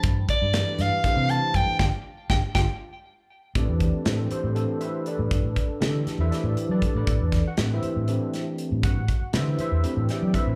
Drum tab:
HH |xxxxxxx|-------|xxxxxxx|xxxxxxx|
SD |--oo---|o-oo---|--o----|--ooo--|
BD |oo--o-o|o-oo---|oo-----|oo----o|

HH |xxxxxxx|xxxxxxx|
SD |-oo--o-|--o--o-|
BD |oo-----|oo----o|